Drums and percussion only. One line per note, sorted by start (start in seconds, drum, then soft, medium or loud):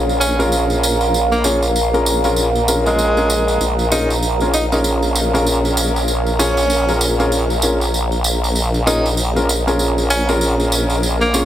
0.09 tambourine soft
0.21 tambourine medium
0.40 tambourine soft
0.52 tambourine soft
0.70 tambourine soft
0.83 tambourine medium
1.01 tambourine soft
1.14 tambourine soft
1.32 tambourine soft
1.44 tambourine medium
1.62 tambourine soft
1.76 tambourine soft
1.94 tambourine soft
2.06 tambourine medium
2.24 tambourine soft
2.36 tambourine medium
2.55 tambourine soft
2.68 tambourine medium
2.86 tambourine soft
2.99 tambourine medium
3.17 tambourine soft
3.30 tambourine medium
3.48 tambourine soft
3.61 tambourine soft
3.79 tambourine soft
3.92 tambourine medium
4.10 tambourine soft
4.23 tambourine soft
4.40 tambourine soft
4.54 tambourine medium
4.72 tambourine soft
4.84 tambourine soft
5.02 tambourine soft
5.15 tambourine medium
5.35 tambourine soft
5.46 tambourine soft
5.65 tambourine soft
5.77 tambourine medium
5.96 tambourine soft
6.08 tambourine soft
6.26 tambourine soft
6.39 tambourine medium
6.57 tambourine soft
6.70 tambourine soft
6.89 tambourine soft
7.01 tambourine medium
7.20 tambourine soft
7.32 tambourine soft
7.50 tambourine soft
7.62 tambourine medium
7.81 tambourine soft
7.94 tambourine soft
8.12 tambourine soft
8.24 tambourine medium
8.44 tambourine soft
8.56 tambourine soft
8.74 tambourine soft
8.87 tambourine medium
9.06 tambourine soft
9.17 tambourine soft
9.36 tambourine soft
9.49 tambourine medium
9.68 tambourine soft
9.79 tambourine soft
9.98 tambourine soft
10.10 tambourine medium
10.29 tambourine soft
10.41 tambourine soft
10.60 tambourine soft
10.72 tambourine medium
10.90 tambourine soft
11.03 tambourine soft
11.21 tambourine soft
11.34 tambourine medium